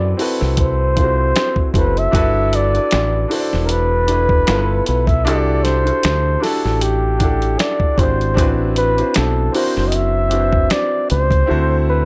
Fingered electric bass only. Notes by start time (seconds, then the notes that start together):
Already playing: F#2
0.42 C2
1.75 F#1
2.14 G1
2.94 A1
3.54 E1
4.49 G1
4.89 B1
5.27 C2
6.05 D2
6.65 A1
7.99 G#1
8.38 A1
9.18 B1
9.77 F#1
11.11 C#2
11.51 D2